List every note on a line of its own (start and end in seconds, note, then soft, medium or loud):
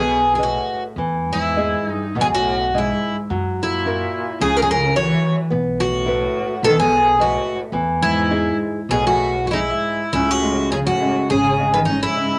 0.00 0.56 B1 medium
0.00 0.28 B2 medium
0.00 0.37 B3 medium
0.00 0.32 G#4 medium
0.33 0.37 B2 soft
0.33 0.41 G#4 soft
0.38 0.80 A2 medium
0.38 0.86 A4 soft
0.38 0.86 B4 soft
0.38 0.86 D#5 soft
0.43 0.83 F#4 medium
0.96 1.73 E2 medium
0.96 1.55 E3 medium
1.27 1.84 G#2 medium
1.33 1.89 E4 medium
1.56 2.04 E4 soft
1.56 2.04 G#4 soft
1.56 2.04 D#5 soft
1.84 2.12 G2 medium
1.89 2.14 D#4 medium
2.15 2.90 B1 medium
2.15 2.22 B2 medium
2.15 2.72 B2 medium
2.21 2.26 G#4 medium
2.31 2.71 A2 medium
2.31 2.77 F#4 medium
2.74 3.13 G#2 medium
2.74 3.20 E4 soft
2.74 3.20 G#4 soft
2.74 3.19 D#5 soft
2.78 3.16 E4 medium
3.30 4.02 F#2 medium
3.30 3.84 F#3 medium
3.62 4.39 A#2 medium
3.62 4.46 E4 medium
3.86 4.30 E4 soft
3.86 4.31 F#4 soft
3.86 4.31 A#4 soft
4.41 5.13 C#2 medium
4.41 4.95 C#3 medium
4.41 4.56 C#3 medium
4.41 4.57 G#4 medium
4.56 4.62 C#3 medium
4.56 4.62 A#4 medium
4.62 4.68 B2 medium
4.62 4.69 G#4 medium
4.68 4.95 C#3 medium
4.68 4.96 A#4 medium
4.96 5.35 E3 medium
4.96 5.40 E4 soft
4.96 5.41 F#4 soft
4.96 5.41 A#4 medium
4.96 5.35 C#5 medium
5.50 6.25 B1 medium
5.50 6.06 B3 medium
5.80 6.61 A2 medium
5.80 6.64 F#4 medium
6.06 6.52 E4 soft
6.06 6.52 A4 soft
6.06 6.53 B4 medium
6.63 7.35 B1 medium
6.63 6.77 D#3 medium
6.63 7.18 B3 medium
6.63 6.79 A4 loud
6.80 7.17 B2 medium
6.80 7.21 G#4 medium
7.19 7.58 A2 medium
7.19 7.59 F#4 medium
7.19 7.63 A4 soft
7.19 7.64 B4 soft
7.19 7.64 D#5 medium
7.72 8.49 E2 medium
7.72 8.29 E3 medium
8.02 8.56 G#2 medium
8.02 8.57 E4 medium
8.31 8.79 D#4 soft
8.31 8.79 E4 soft
8.31 8.79 G#4 soft
8.89 9.70 B1 medium
8.89 9.02 B2 medium
8.89 9.52 B2 medium
8.89 9.05 G#4 medium
9.02 9.41 A2 medium
9.07 9.46 F#4 medium
9.45 9.50 A2 soft
9.45 9.51 F#4 soft
9.50 9.68 G#2 medium
9.50 9.58 D#4 medium
9.50 9.69 E4 medium
9.50 10.01 E4 soft
9.50 10.01 G#4 soft
9.50 10.01 D#5 soft
9.68 10.13 G#2 medium
9.68 10.12 E4 medium
10.13 10.89 C#2 medium
10.13 10.29 G#2 medium
10.13 12.39 C#3 medium
10.13 10.31 E4 medium
10.27 10.71 A2 medium
10.27 10.71 F#4 medium
10.43 10.71 G#3 soft
10.70 10.78 C#3 medium
10.70 10.99 C#4 medium
10.70 10.77 G#4 medium
10.87 11.27 A2 medium
10.87 11.27 F#4 medium
11.01 11.29 G#3 soft
11.30 12.04 G#1 medium
11.30 11.71 C#3 medium
11.30 11.59 C#4 medium
11.30 11.73 G#4 medium
11.59 11.87 G#3 soft
11.74 11.80 D#3 medium
11.74 11.79 B4 medium
11.85 12.00 G#2 medium
11.85 11.99 D#4 medium
11.89 12.16 C#4 medium
12.01 12.39 G#2 medium
12.01 12.39 E4 medium
12.16 12.39 G#3 medium